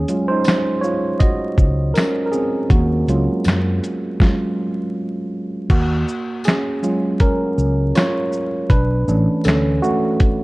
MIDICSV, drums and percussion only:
0, 0, Header, 1, 2, 480
1, 0, Start_track
1, 0, Tempo, 750000
1, 1727, Time_signature, 4, 2, 24, 8
1, 6680, End_track
2, 0, Start_track
2, 0, Title_t, "Drums"
2, 53, Note_on_c, 9, 42, 51
2, 53, Note_on_c, 9, 82, 53
2, 117, Note_off_c, 9, 42, 0
2, 117, Note_off_c, 9, 82, 0
2, 284, Note_on_c, 9, 54, 62
2, 288, Note_on_c, 9, 42, 66
2, 308, Note_on_c, 9, 38, 107
2, 314, Note_on_c, 9, 26, 88
2, 348, Note_off_c, 9, 54, 0
2, 352, Note_off_c, 9, 42, 0
2, 372, Note_off_c, 9, 38, 0
2, 378, Note_off_c, 9, 26, 0
2, 534, Note_on_c, 9, 82, 43
2, 598, Note_off_c, 9, 82, 0
2, 769, Note_on_c, 9, 42, 92
2, 770, Note_on_c, 9, 36, 95
2, 833, Note_off_c, 9, 42, 0
2, 834, Note_off_c, 9, 36, 0
2, 1009, Note_on_c, 9, 36, 83
2, 1012, Note_on_c, 9, 82, 45
2, 1073, Note_off_c, 9, 36, 0
2, 1076, Note_off_c, 9, 82, 0
2, 1250, Note_on_c, 9, 42, 63
2, 1252, Note_on_c, 9, 54, 62
2, 1264, Note_on_c, 9, 38, 94
2, 1270, Note_on_c, 9, 26, 88
2, 1314, Note_off_c, 9, 42, 0
2, 1316, Note_off_c, 9, 54, 0
2, 1328, Note_off_c, 9, 38, 0
2, 1334, Note_off_c, 9, 26, 0
2, 1490, Note_on_c, 9, 82, 42
2, 1554, Note_off_c, 9, 82, 0
2, 1728, Note_on_c, 9, 36, 120
2, 1732, Note_on_c, 9, 42, 84
2, 1792, Note_off_c, 9, 36, 0
2, 1796, Note_off_c, 9, 42, 0
2, 1974, Note_on_c, 9, 42, 46
2, 1974, Note_on_c, 9, 82, 53
2, 2038, Note_off_c, 9, 42, 0
2, 2038, Note_off_c, 9, 82, 0
2, 2204, Note_on_c, 9, 54, 69
2, 2208, Note_on_c, 9, 42, 63
2, 2228, Note_on_c, 9, 38, 104
2, 2234, Note_on_c, 9, 26, 93
2, 2268, Note_off_c, 9, 54, 0
2, 2272, Note_off_c, 9, 42, 0
2, 2292, Note_off_c, 9, 38, 0
2, 2298, Note_off_c, 9, 26, 0
2, 2456, Note_on_c, 9, 42, 40
2, 2456, Note_on_c, 9, 82, 43
2, 2520, Note_off_c, 9, 42, 0
2, 2520, Note_off_c, 9, 82, 0
2, 2688, Note_on_c, 9, 36, 94
2, 2698, Note_on_c, 9, 38, 77
2, 2752, Note_off_c, 9, 36, 0
2, 2762, Note_off_c, 9, 38, 0
2, 3647, Note_on_c, 9, 36, 114
2, 3647, Note_on_c, 9, 49, 92
2, 3650, Note_on_c, 9, 42, 79
2, 3711, Note_off_c, 9, 36, 0
2, 3711, Note_off_c, 9, 49, 0
2, 3714, Note_off_c, 9, 42, 0
2, 3893, Note_on_c, 9, 82, 48
2, 3957, Note_off_c, 9, 82, 0
2, 4122, Note_on_c, 9, 54, 68
2, 4127, Note_on_c, 9, 42, 66
2, 4148, Note_on_c, 9, 38, 118
2, 4153, Note_on_c, 9, 26, 95
2, 4186, Note_off_c, 9, 54, 0
2, 4191, Note_off_c, 9, 42, 0
2, 4212, Note_off_c, 9, 38, 0
2, 4217, Note_off_c, 9, 26, 0
2, 4374, Note_on_c, 9, 82, 44
2, 4438, Note_off_c, 9, 82, 0
2, 4607, Note_on_c, 9, 42, 87
2, 4609, Note_on_c, 9, 36, 91
2, 4671, Note_off_c, 9, 42, 0
2, 4673, Note_off_c, 9, 36, 0
2, 4852, Note_on_c, 9, 82, 46
2, 4916, Note_off_c, 9, 82, 0
2, 5090, Note_on_c, 9, 42, 68
2, 5090, Note_on_c, 9, 54, 58
2, 5104, Note_on_c, 9, 38, 110
2, 5110, Note_on_c, 9, 26, 91
2, 5154, Note_off_c, 9, 42, 0
2, 5154, Note_off_c, 9, 54, 0
2, 5168, Note_off_c, 9, 38, 0
2, 5174, Note_off_c, 9, 26, 0
2, 5328, Note_on_c, 9, 82, 45
2, 5392, Note_off_c, 9, 82, 0
2, 5566, Note_on_c, 9, 36, 122
2, 5570, Note_on_c, 9, 42, 87
2, 5630, Note_off_c, 9, 36, 0
2, 5634, Note_off_c, 9, 42, 0
2, 5811, Note_on_c, 9, 82, 53
2, 5875, Note_off_c, 9, 82, 0
2, 6042, Note_on_c, 9, 54, 66
2, 6048, Note_on_c, 9, 42, 74
2, 6068, Note_on_c, 9, 38, 106
2, 6073, Note_on_c, 9, 26, 102
2, 6106, Note_off_c, 9, 54, 0
2, 6112, Note_off_c, 9, 42, 0
2, 6132, Note_off_c, 9, 38, 0
2, 6137, Note_off_c, 9, 26, 0
2, 6295, Note_on_c, 9, 82, 47
2, 6359, Note_off_c, 9, 82, 0
2, 6527, Note_on_c, 9, 42, 93
2, 6530, Note_on_c, 9, 36, 91
2, 6591, Note_off_c, 9, 42, 0
2, 6594, Note_off_c, 9, 36, 0
2, 6680, End_track
0, 0, End_of_file